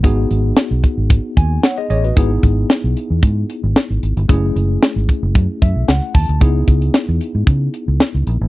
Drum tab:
HH |x-x-x-x-x-x-x-xx|x-x-x-x-x-x-x-xx|x-x-x-x-x-x-x-ox|x-xxx-x-x-x-x-x-|
SD |----o-------o---|----o-------o---|----o-------o---|----o-------o---|
BD |o-----o-o-o-----|o-o-----o-------|o-----o-o-o---o-|o-o-----o-------|